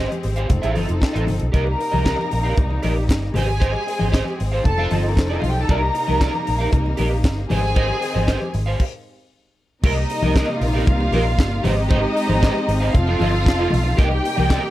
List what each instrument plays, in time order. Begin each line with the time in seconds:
Already playing: string section G#3 C4 G4, clean electric guitar G4 C5
0.10 muted clean electric guitar stroke, closed hi-hat, muted conga, high conga
0.23 fingered electric bass G#1, muted clean electric guitar stroke, open hi-hat
0.36 clean electric guitar G4 C5 F5, closed hi-hat
0.49 fingered electric bass F1, string section F3 D#4 A4, muted clean electric guitar stroke, kick, closed hi-hat, low conga
0.62 fingered electric bass A1, clean electric guitar F4 A4 F5, closed hi-hat, muted conga
0.75 fingered electric bass G1, clean electric guitar F4 A4 D#5, open hi-hat, high conga
0.88 fingered electric bass F1, muted clean electric guitar stroke, closed hi-hat
1.01 muted clean electric guitar stroke, kick, snare, clap, muted conga
1.13 fingered electric bass A1, clean electric guitar F4 A4 D#5, closed hi-hat, muted conga
1.27 fingered electric bass G1, muted clean electric guitar stroke, open hi-hat, high conga, low conga
1.40 fingered electric bass B1, muted clean electric guitar stroke, closed hi-hat
1.52 fingered electric bass C2, string section C3 G3 A#3 D#4, clean electric guitar G4 A#4 D#5, violin section A#4 A#5, kick, closed hi-hat, muted conga
1.66 muted clean electric guitar stroke, muted conga
1.79 muted clean electric guitar stroke, open hi-hat
1.92 fingered electric bass C2, clean electric guitar G4 A#4 D#5, high conga
2.04 clean electric guitar G4 A#4 D#5, kick, snare, clap, closed hi-hat
2.18 muted clean electric guitar stroke, muted conga, high conga
2.31 fingered electric bass A#1, muted clean electric guitar stroke, open hi-hat
2.43 clean electric guitar G4 A#4 F5
2.57 fingered electric bass C2, muted clean electric guitar stroke, kick, closed hi-hat, muted conga, low conga
2.70 muted clean electric guitar stroke, muted conga
2.82 fingered electric bass A#1, clean electric guitar G4 A#4 D#5, open hi-hat, high conga
2.95 muted clean electric guitar stroke
3.08 fingered electric bass G1, muted clean electric guitar stroke, kick, snare, clap, closed hi-hat, muted conga
3.22 muted clean electric guitar stroke
3.34 fingered electric bass G#1, string section G#3 C4 G#4, clean electric guitar G4 C5 D#5, violin section G#4 G#5, open hi-hat, high conga, low conga
3.48 muted clean electric guitar stroke
3.60 clean electric guitar G4 C5 D#5, kick, closed hi-hat
3.73 muted clean electric guitar stroke, muted conga
3.87 muted clean electric guitar stroke, open hi-hat
3.99 fingered electric bass G#1, clean electric guitar G4 C5 D#5, high conga
4.12 clean electric guitar G4 C5 D#5, kick, snare, clap, closed hi-hat, muted conga
4.25 muted clean electric guitar stroke, high conga
4.39 fingered electric bass G#1, muted clean electric guitar stroke, open hi-hat
4.52 clean electric guitar G4 C5 F5
4.64 fingered electric bass F1, string section F3 D#4 A4, violin section A4 A5, muted clean electric guitar stroke, kick, closed hi-hat, muted conga, low conga
4.78 clean electric guitar F4 A4 F5, muted conga
4.91 fingered electric bass G1, clean electric guitar F4 A4 D#5, open hi-hat, high conga
5.04 violin section A#3 A#4, muted clean electric guitar stroke
5.15 fingered electric bass F1, violin section C4 C5, muted clean electric guitar stroke, kick, snare, closed hi-hat, muted conga
5.19 clap
5.25 violin section D4 D5
5.29 violin section D#4 D#5, clean electric guitar F4 A4 D#5
5.40 fingered electric bass B1, violin section F4 F5, muted clean electric guitar stroke, open hi-hat, high conga, low conga
5.50 violin section G4 G5
5.56 muted clean electric guitar stroke
5.60 violin section A4 A5
5.67 fingered electric bass C2, string section C3 G3 A#3, clean electric guitar G4 A#4 D#5, violin section A#4 A#5, kick, closed hi-hat, muted conga
5.81 muted clean electric guitar stroke
5.94 muted clean electric guitar stroke, open hi-hat
6.07 fingered electric bass C2, clean electric guitar G4 A#4 D#5, high conga
6.20 clean electric guitar G4 A#4 D#5, kick, snare, clap, muted conga
6.33 muted clean electric guitar stroke, high conga
6.46 fingered electric bass A#1, muted clean electric guitar stroke, open hi-hat
6.59 clean electric guitar G4 A#4 F5
6.71 fingered electric bass C2, muted clean electric guitar stroke, kick, closed hi-hat, muted conga, low conga
6.84 muted clean electric guitar stroke, muted conga
6.97 fingered electric bass A#1, clean electric guitar G4 A#4 D#5, open hi-hat, high conga
7.11 muted clean electric guitar stroke
7.24 fingered electric bass G1, muted clean electric guitar stroke, kick, snare, clap, closed hi-hat
7.37 muted clean electric guitar stroke
7.49 fingered electric bass G#1, string section D#3 G#3 C4, clean electric guitar G4 C5 D#5, violin section G#4 G#5, open hi-hat, high conga, low conga
7.63 muted clean electric guitar stroke
7.75 clean electric guitar G4 C5 D#5, kick, closed hi-hat, muted conga
7.88 muted clean electric guitar stroke, muted conga
8.01 muted clean electric guitar stroke, open hi-hat
8.14 fingered electric bass G#1, clean electric guitar G4 C5 D#5, high conga
8.27 clean electric guitar G4 C5 D#5, kick, snare, clap, closed hi-hat
8.40 muted clean electric guitar stroke, muted conga, high conga
8.54 fingered electric bass G#1, muted clean electric guitar stroke, open hi-hat
8.66 clean electric guitar G4 C5 F5
8.80 kick, crash
9.83 fingered electric bass C2, string section C3 G3 A#3 D#4, violin section D#4 D#5, clean electric guitar G4 A#4 D#5, kick, crash, muted conga, low conga
9.96 muted clean electric guitar stroke, muted conga
10.10 muted clean electric guitar stroke, open hi-hat
10.22 fingered electric bass C2, clean electric guitar G4 A#4 D#5, high conga
10.35 clean electric guitar G4 A#4 D#5, kick, snare, clap, closed hi-hat, muted conga
10.48 muted clean electric guitar stroke, muted conga
10.61 fingered electric bass A#1, violin section F4 F5, muted clean electric guitar stroke, open hi-hat
10.73 clean electric guitar G4 A#4 F5
10.87 fingered electric bass C2, muted clean electric guitar stroke, kick, closed hi-hat, muted conga, low conga
10.99 muted clean electric guitar stroke, muted conga
11.11 fingered electric bass A#1, clean electric guitar G4 A#4 D#5, open hi-hat, high conga
11.26 muted clean electric guitar stroke
11.38 fingered electric bass G1, muted clean electric guitar stroke, kick, snare, clap, closed hi-hat
11.51 muted clean electric guitar stroke
11.63 fingered electric bass G#1, string section G#3 C4 G4, violin section D#4 D#5, clean electric guitar G4 C5 D#5, open hi-hat, high conga, low conga
11.75 muted clean electric guitar stroke
11.89 clean electric guitar G4 C5 D#5, kick, closed hi-hat, low conga
12.01 muted clean electric guitar stroke
12.15 muted clean electric guitar stroke, open hi-hat
12.27 fingered electric bass G#1, clean electric guitar G4 C5 D#5, high conga
12.41 clean electric guitar G4 C5 D#5, kick, snare, clap, closed hi-hat
12.55 muted clean electric guitar stroke, muted conga
12.68 fingered electric bass G#1, muted clean electric guitar stroke, open hi-hat
12.80 clean electric guitar G4 C5 F5
12.94 fingered electric bass F1, string section F3 D#4 A4, violin section F4 F5, muted clean electric guitar stroke, kick, closed hi-hat, muted conga, low conga
13.06 clean electric guitar F4 A4 F5, muted conga
13.19 fingered electric bass G1, clean electric guitar F4 A4 D#5, open hi-hat, high conga
13.32 muted clean electric guitar stroke
13.44 fingered electric bass F1, muted clean electric guitar stroke, kick, closed hi-hat, muted conga
13.48 snare, clap
13.58 clean electric guitar F4 A4 D#5
13.70 fingered electric bass B1, muted clean electric guitar stroke, open hi-hat, high conga, low conga
13.83 muted clean electric guitar stroke
13.97 fingered electric bass C2, string section C3 G3 A#3 D#4, clean electric guitar G4 A#4 D#5, violin section G4 G5, kick, closed hi-hat, muted conga, low conga
14.10 muted clean electric guitar stroke, muted conga
14.23 muted clean electric guitar stroke, open hi-hat
14.36 fingered electric bass C2, clean electric guitar G4 A#4 D#5, high conga
14.49 clean electric guitar G4 A#4 D#5, kick, snare, clap, closed hi-hat
14.62 muted clean electric guitar stroke, muted conga